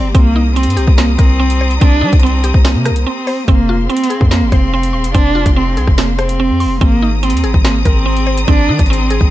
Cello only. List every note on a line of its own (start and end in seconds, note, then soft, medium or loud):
0.00 0.11 C4 medium
0.15 0.54 A#3 loud
0.56 0.95 C4 medium
0.98 1.17 A#3 medium
1.18 1.77 C4 medium
1.81 2.21 D4 loud
2.23 2.62 C4 medium
2.65 3.04 A#3 medium
3.06 3.45 C4 medium
3.48 3.87 A#3 loud
3.90 4.29 C4 loud
4.31 4.50 A#3 loud
4.52 5.11 C4 medium
5.15 5.54 D4 loud
5.56 5.95 C4 medium
5.98 6.17 A#3 medium
6.19 6.78 C4 medium
6.81 7.20 A#3 loud
7.23 7.62 C4 medium
7.65 7.84 A#3 medium
7.85 8.44 C4 loud
8.48 8.87 D4 loud
8.90 9.29 C4 medium